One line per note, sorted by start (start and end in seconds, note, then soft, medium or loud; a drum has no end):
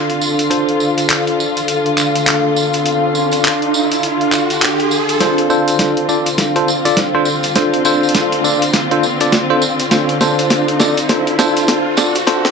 0.00 5.17 D3 medium
0.00 0.46 C4 medium
0.00 12.51 D4 medium
0.00 5.17 F4 medium
0.00 12.51 A4 medium
0.00 12.51 F5 medium
0.00 12.51 C6 medium
0.10 closed hi-hat soft
0.21 tambourine medium
0.39 closed hi-hat soft
0.39 tambourine medium
0.50 5.18 D4 medium
0.50 5.18 F4 medium
0.50 5.18 A4 medium
0.50 5.18 C5 medium
0.50 closed hi-hat medium
0.50 tambourine soft
0.50 riser medium
0.69 closed hi-hat soft
0.80 tambourine medium
0.98 closed hi-hat soft
0.98 tambourine soft
1.10 clap loud
1.10 closed hi-hat medium
1.10 tambourine soft
1.27 closed hi-hat soft
1.40 tambourine medium
1.57 closed hi-hat soft
1.57 tambourine soft
1.68 closed hi-hat medium
1.68 tambourine soft
1.86 closed hi-hat soft
1.97 clap medium
1.97 tambourine loud
2.15 closed hi-hat soft
2.15 tambourine soft
2.27 clap loud
2.27 closed hi-hat medium
2.27 tambourine soft
2.56 tambourine medium
2.73 closed hi-hat soft
2.73 tambourine medium
2.85 closed hi-hat medium
2.85 tambourine soft
3.15 tambourine medium
3.32 closed hi-hat soft
3.32 tambourine medium
3.44 clap loud
3.44 closed hi-hat medium
3.44 tambourine soft
3.62 closed hi-hat soft
3.74 tambourine medium
3.91 closed hi-hat soft
3.91 tambourine soft
4.03 closed hi-hat medium
4.03 tambourine soft
4.21 closed hi-hat soft
4.32 clap medium
4.32 tambourine medium
4.50 closed hi-hat soft
4.50 tambourine soft
4.62 clap loud
4.62 closed hi-hat medium
4.62 tambourine soft
4.80 closed hi-hat soft
4.91 tambourine medium
5.09 closed hi-hat soft
5.09 tambourine medium
5.20 12.51 D3 medium
5.20 12.51 C4 medium
5.20 5.47 D4 medium
5.20 12.51 F4 medium
5.20 5.47 F4 medium
5.20 5.47 A4 medium
5.20 5.47 C5 medium
5.20 snare soft
5.20 closed hi-hat medium
5.20 tambourine soft
5.20 riser medium
5.38 closed hi-hat soft
5.50 6.06 D4 medium
5.50 6.06 F4 medium
5.50 6.06 A4 medium
5.50 6.06 C5 medium
5.50 tambourine medium
5.68 closed hi-hat soft
5.68 tambourine soft
5.79 snare soft
5.79 closed hi-hat medium
5.79 tambourine soft
5.97 closed hi-hat soft
6.09 6.27 D4 medium
6.09 6.27 F4 medium
6.09 6.27 A4 medium
6.09 6.27 D5 medium
6.09 tambourine medium
6.26 closed hi-hat soft
6.26 tambourine medium
6.38 snare soft
6.38 closed hi-hat medium
6.38 tambourine soft
6.56 6.69 D4 medium
6.56 6.69 F4 medium
6.56 6.69 A4 medium
6.56 6.69 C5 medium
6.56 closed hi-hat soft
6.68 tambourine medium
6.85 6.98 D4 medium
6.85 6.98 F4 medium
6.85 6.98 A4 medium
6.85 6.98 D5 loud
6.85 closed hi-hat medium
6.85 tambourine medium
6.97 snare medium
6.97 closed hi-hat medium
6.97 tambourine soft
7.15 7.28 D4 medium
7.15 7.28 F4 medium
7.15 7.28 A4 medium
7.15 7.28 C5 loud
7.25 tambourine medium
7.43 closed hi-hat medium
7.43 tambourine soft
7.56 7.82 D4 medium
7.56 7.82 F4 medium
7.56 7.82 A4 medium
7.56 7.82 C5 medium
7.56 snare medium
7.56 closed hi-hat medium
7.56 tambourine soft
7.74 closed hi-hat soft
7.85 8.41 D4 medium
7.85 8.41 F4 medium
7.85 8.41 A4 medium
7.85 8.41 C5 loud
7.85 tambourine medium
8.03 tambourine medium
8.09 closed hi-hat medium
8.15 snare medium
8.15 closed hi-hat medium
8.15 tambourine soft
8.32 closed hi-hat soft
8.44 8.63 D4 medium
8.44 8.63 F4 medium
8.44 8.63 A4 medium
8.44 8.63 D5 medium
8.44 tambourine loud
8.62 closed hi-hat medium
8.62 tambourine medium
8.73 snare medium
8.73 closed hi-hat medium
8.73 tambourine soft
8.91 9.04 D4 medium
8.91 9.04 F4 medium
8.91 9.04 A4 medium
8.91 9.04 C5 medium
8.91 closed hi-hat soft
9.03 tambourine medium
9.20 9.34 D4 medium
9.20 9.34 F4 medium
9.20 9.34 A4 medium
9.20 9.34 D5 loud
9.20 closed hi-hat medium
9.20 tambourine medium
9.32 snare medium
9.32 closed hi-hat medium
9.32 tambourine soft
9.50 9.63 D4 medium
9.50 9.63 F4 medium
9.50 9.63 A4 medium
9.50 9.63 C5 loud
9.62 tambourine loud
9.79 closed hi-hat medium
9.79 tambourine medium
9.91 10.17 D4 medium
9.91 10.17 F4 medium
9.91 10.17 A4 medium
9.91 10.17 C5 medium
9.91 snare medium
9.91 closed hi-hat medium
9.91 tambourine soft
10.09 closed hi-hat soft
10.21 10.77 D4 medium
10.21 10.77 F4 medium
10.21 10.77 A4 medium
10.21 10.77 C5 medium
10.21 snare medium
10.21 tambourine loud
10.39 closed hi-hat medium
10.39 tambourine soft
10.50 snare medium
10.50 closed hi-hat medium
10.50 tambourine soft
10.68 closed hi-hat soft
10.79 10.98 D4 medium
10.79 10.98 F4 medium
10.79 10.98 A4 medium
10.79 10.98 D5 medium
10.79 snare medium
10.79 tambourine medium
10.97 closed hi-hat medium
10.97 tambourine medium
11.09 11.35 D4 medium
11.09 11.35 F4 medium
11.09 11.35 A4 medium
11.09 11.35 C5 medium
11.09 snare medium
11.09 closed hi-hat medium
11.09 tambourine soft
11.27 closed hi-hat soft
11.39 11.95 D4 medium
11.39 11.95 F4 medium
11.39 11.95 A4 medium
11.39 11.95 C5 loud
11.39 snare medium
11.39 tambourine medium
11.56 closed hi-hat medium
11.56 tambourine medium
11.68 snare medium
11.68 closed hi-hat medium
11.68 tambourine soft
11.97 12.16 D4 medium
11.97 12.16 F4 medium
11.97 12.16 A4 medium
11.97 12.16 D5 medium
11.97 snare medium
11.97 tambourine medium
12.15 closed hi-hat medium
12.15 tambourine medium
12.27 12.51 D4 medium
12.27 12.51 F4 medium
12.27 12.51 A4 medium
12.27 12.51 C5 medium
12.27 snare loud
12.27 closed hi-hat medium
12.27 tambourine soft
12.45 snare medium
12.45 closed hi-hat soft